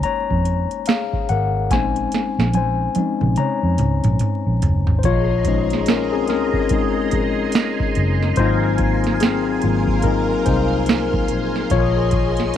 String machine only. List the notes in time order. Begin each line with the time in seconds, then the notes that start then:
5.03 G#4 D#5 A#5 C6
8.37 A#4 F5 G#5
11.70 G#4 D#5 C#6